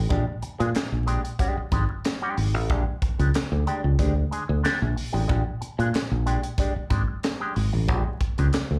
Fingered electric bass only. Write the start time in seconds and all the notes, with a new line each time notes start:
0.11 A#1
0.42 muted fingered electric bass stroke
0.60 A#2
0.76 muted fingered electric bass stroke
0.92 A#1
1.57 muted fingered electric bass stroke
1.72 G#1
2.38 G#1
2.54 A1
2.70 A#1
3.19 C#2
3.52 D2
3.84 C#2
3.99 D2
4.49 D2
4.64 muted fingered electric bass stroke
4.82 A#1
5.14 A1
5.30 A#1
5.62 muted fingered electric bass stroke
5.79 A#2
5.95 muted fingered electric bass stroke
6.11 A#1
6.76 muted fingered electric bass stroke
6.90 G#1
7.56 G#1
7.73 A1
7.88 A#1
8.39 C#2
8.71 D2